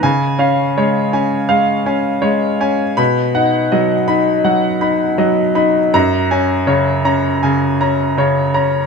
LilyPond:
\new Staff \with { instrumentName = "Grand piano" } { \time 4/4 \key cis \mixolydian \tempo 4 = 81 << { gis''4 r2. | b''4 r2. | ais''4 r2. | } \\ { cis8 <cis' eis''>8 <gis cis''>8 <cis' gis''>8 <gis eis''>8 <cis' gis''>8 <gis cis''>8 <cis' gis''>8 | b,8 <dis' fis''>8 <fis dis''>8 <dis' b''>8 <fis fis''>8 <dis' b''>8 <fis dis''>8 <dis' b''>8 | fis,8 <cis' gis''>8 <cis cis''>8 <cis' ais''>8 <cis gis''>8 <cis' ais''>8 <cis cis''>8 <cis' ais''>8 | } >> }